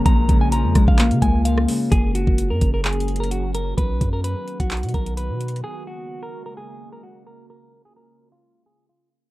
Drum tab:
HH |x-----------x-----------x-----------x-----------x-----x-----x-----------x-----------o-----------|x-----------x-----------x-----------x-----------x---x---x---x---x---x---x-----------x-----------|x-----------x-----------x-----------x-----x-----x--x--x--x--x-----x-----x-----------x---x---x---|------------------------------------------------------------------------------------------------|
CP |------------------------------------------------x-----------------------------------------------|------------------------------------------------x-----------------------------------------------|------------------------------------------------x-----------------------------------------------|------------------------------------------------------------------------------------------------|
SD |------------------------------------r-----------------------------------------r-----------------|------------------------------------------------------------------------------------------------|------------------------------------------------------------------------------------------------|------------------------------------------------------------------------------------------------|
BD |o-----------o-----------------------o-----o-----------------o-----------------------------------|o-----------------o-----------------o-----------------------------------------------------------|o-----------o-----------------------------o-----------------o-----------------------------------|------------------------------------------------------------------------------------------------|

HH |------------------------------------------------------------------------------------------------|
CP |------------------------------------------------------------------------------------------------|
SD |------------------------------------------------------------------------------------------------|
BD |------------------------------------------------------------------------------------------------|